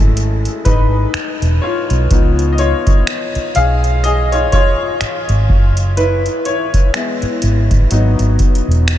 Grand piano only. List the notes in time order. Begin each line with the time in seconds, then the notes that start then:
Already playing: F#3 G#3 A3 C#4 E4 G#4 A4
0.65 D#4 B4
1.62 F4 C#5
2.11 F3 B3 D#4
2.53 D#5
2.59 F4 C#5
3.56 G#4 F5
4.04 G#4 D#5
4.32 F4 C#5
4.52 F4 C#5
5.97 E4 B4
6.46 E4 C#5
6.94 G#3 B3 E4
7.91 F#3 B3 D#4